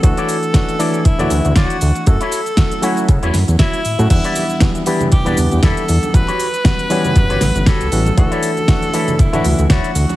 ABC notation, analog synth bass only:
X:1
M:4/4
L:1/16
Q:"Swing 16ths" 1/4=118
K:D
V:1 name="Analog synth bass" clef=bass
D,, z6 z D,,, D,,, D,, D,, D,, z D,, z | F,, z6 z C, E,, F,, E,, z2 A,, A,, | E,, z6 z E,,, E,,, E,, E,, E,, z E,, z | A,,, z6 z F,, G,,, A,,, G,,,2 C,, A,,, z |
D,, z6 z D,,, D,,, D,, D,, D,, z D,, z |]